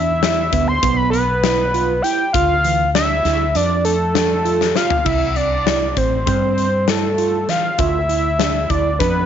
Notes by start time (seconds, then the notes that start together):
Already playing: E2 D4 E5
0.22 E4, snare, closed hi-hat
0.52 D2 B3, kick, closed hi-hat
0.68 C6
0.83 B1 B3, kick, closed hi-hat
0.97 B5
1.10 B4, closed hi-hat
1.44 E4, snare, closed hi-hat
1.74 F4, closed hi-hat
2.02 E4 G5, closed hi-hat
2.33 D2 F4 F5, kick, closed hi-hat
2.64 E3, closed hi-hat
2.95 D4 E5, snare, closed hi-hat
3.25 D2 E4, snare, closed hi-hat
3.55 F2 D4 D5, closed hi-hat
3.85 A4, closed hi-hat
4.14 D4, snare, closed hi-hat
4.45 F4, closed hi-hat
4.61 snare
4.75 F4 F5, snare
4.90 floor tom
5.05 C2 E4 E5, kick, crash
5.35 C4 D5, closed hi-hat
5.66 E4, snare, closed hi-hat
5.96 A1 C4 C5, kick, closed hi-hat
6.26 G2 C4 C5, kick, closed hi-hat
6.58 closed hi-hat
6.88 E4 A4, snare, closed hi-hat
7.18 F4, closed hi-hat
7.48 E3 F5, snare, closed hi-hat
7.78 D2 F4 E5, kick, closed hi-hat
8.09 E4, closed hi-hat
8.39 D4, snare, closed hi-hat
8.70 D2 E4 D5, kick, closed hi-hat
8.99 F2 D4 B4, kick, snare, closed hi-hat